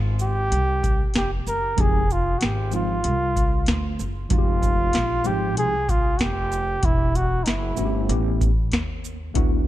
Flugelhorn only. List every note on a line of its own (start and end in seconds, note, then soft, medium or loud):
0.22 1.12 G4 loud
1.17 1.31 G4 medium
1.48 1.82 A#4 medium
1.81 2.14 G#4 medium
2.12 2.40 F4 medium
2.38 2.45 F#4 medium
2.43 2.74 G4 medium
2.75 3.96 F4 medium
4.33 5.28 F4 medium
5.27 5.58 G4 medium
5.59 5.91 G#4 loud
5.90 6.19 F4 medium
6.17 6.23 F#4 medium
6.21 6.86 G4 loud
6.85 7.18 E4 medium
7.16 7.45 F#4 medium
7.44 7.50 D#4 soft
7.48 8.10 E4 medium